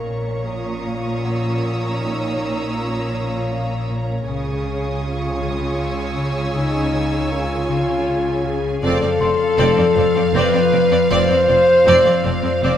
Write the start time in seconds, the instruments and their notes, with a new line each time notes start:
Already playing: double bass section A#1, cello section A#2, viola section C#4, french horn section A#4, glass harmonica A#4 C#5, violin section C#5 A#5 C#6
0.10 harp A#2
0.46 harp A#3, french horn section F4, violin section D#6
0.86 harp A#2
1.24 harp A#3, celesta F#5, violin section E6
1.63 harp A#2
1.99 harp A#2, french horn section D#4
2.37 harp A#2
2.75 harp A#3, french horn section F4
3.14 harp A#2
3.52 harp A#3, celesta F4 F5
3.89 harp A#2
4.26 double bass section C#2, cello section C#3, harp C#3, viola section C#4, french horn section G#4, glass harmonica G#4 C#5 F5, violin section C#5 G#5 C#6 D#6
4.66 harp C#3
5.01 harp C#4, french horn section F4
5.41 harp C#3
5.78 harp C#4
5.82 violin section E6
6.17 harp C#3
6.54 harp C#3, french horn section D#4
6.93 harp C#3
7.31 harp C#4, french horn section F4, celesta A#4 A#5
7.68 harp C#3
8.06 harp C#4
8.44 harp C#3, french horn section G#4
8.82 double bass section F1, cello section F2, harp F2, viola section C4, glass harmonica F4 D5 F5, french horn section A4, violin section D5 F5
9.01 cello section F2, viola section C4, violin section D5
9.20 double bass section F1, harp F2, cello section F2, viola section C4, violin section D5, celesta C6
9.58 double bass section F1, cello section F2, harp F3, viola section C4, violin section D5
9.77 cello section F2, viola section C4, violin section D5
9.95 double bass section F1, harp F2, cello section F2, viola section C4, violin section D5
10.15 cello section F2, viola section C4, violin section D5
10.34 double bass section F1, cello section F2, harp F3, viola section C4, french horn section B4, violin section D5, celesta D6
10.53 cello section F2, viola section C4, violin section D5
10.72 double bass section F1, cello section F2, harp F2, viola section C4, violin section D5
10.91 cello section F2, viola section C4, violin section D5
11.10 double bass section F1, cello section F2, harp F2, viola section C4, french horn section C5, violin section D5
11.29 cello section F2, viola section C4, violin section D5
11.48 double bass section F1, cello section F2, harp F2, viola section C4, violin section D5
11.86 double bass section F1, cello section F2, harp F3, viola section C4, violin section D5, celesta E6
12.04 cello section F2, viola section C4, violin section D5
12.24 double bass section F1, cello section F2, harp F2, viola section C4, french horn section C5, violin section D5
12.42 cello section F2, viola section C4, violin section D5
12.62 double bass section F1, cello section F2, harp F3, viola section C4, violin section D5, celesta D6